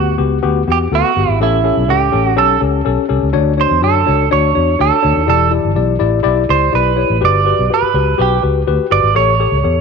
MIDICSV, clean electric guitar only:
0, 0, Header, 1, 2, 480
1, 0, Start_track
1, 0, Tempo, 483871
1, 1396, Time_signature, 4, 2, 24, 8
1, 9730, End_track
2, 0, Start_track
2, 0, Title_t, "Clean electric guitar"
2, 0, Program_c, 0, 27
2, 0, Note_on_c, 0, 66, 85
2, 153, Note_off_c, 0, 66, 0
2, 711, Note_on_c, 0, 67, 77
2, 771, Note_off_c, 0, 67, 0
2, 943, Note_on_c, 0, 66, 91
2, 1377, Note_off_c, 0, 66, 0
2, 1416, Note_on_c, 0, 64, 91
2, 1886, Note_on_c, 0, 67, 89
2, 1900, Note_off_c, 0, 64, 0
2, 2253, Note_off_c, 0, 67, 0
2, 2253, Note_on_c, 0, 66, 89
2, 2360, Note_off_c, 0, 66, 0
2, 2364, Note_on_c, 0, 69, 92
2, 2583, Note_off_c, 0, 69, 0
2, 3579, Note_on_c, 0, 72, 98
2, 3803, Note_off_c, 0, 72, 0
2, 3807, Note_on_c, 0, 69, 78
2, 4249, Note_off_c, 0, 69, 0
2, 4291, Note_on_c, 0, 73, 89
2, 4769, Note_off_c, 0, 73, 0
2, 4773, Note_on_c, 0, 69, 85
2, 5241, Note_off_c, 0, 69, 0
2, 5253, Note_on_c, 0, 69, 81
2, 5468, Note_off_c, 0, 69, 0
2, 6451, Note_on_c, 0, 72, 78
2, 6690, Note_off_c, 0, 72, 0
2, 6697, Note_on_c, 0, 71, 96
2, 7180, Note_off_c, 0, 71, 0
2, 7191, Note_on_c, 0, 74, 106
2, 7667, Note_off_c, 0, 74, 0
2, 7676, Note_on_c, 0, 71, 87
2, 8149, Note_off_c, 0, 71, 0
2, 8149, Note_on_c, 0, 67, 74
2, 8356, Note_off_c, 0, 67, 0
2, 8850, Note_on_c, 0, 74, 100
2, 9085, Note_off_c, 0, 74, 0
2, 9089, Note_on_c, 0, 73, 106
2, 9730, Note_off_c, 0, 73, 0
2, 9730, End_track
0, 0, End_of_file